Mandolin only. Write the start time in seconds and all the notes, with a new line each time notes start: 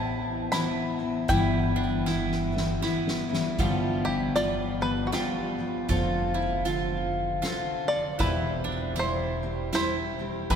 Already playing: E4
0.52 E4
1.30 E4
1.76 D4
2.06 E4
2.82 E4
3.59 F4
4.05 E4
4.36 F4
5.12 F4
5.89 F4
6.34 E4
6.65 F4
7.42 F4
8.19 E4
8.64 D4
8.96 E4
9.73 E4
10.50 E4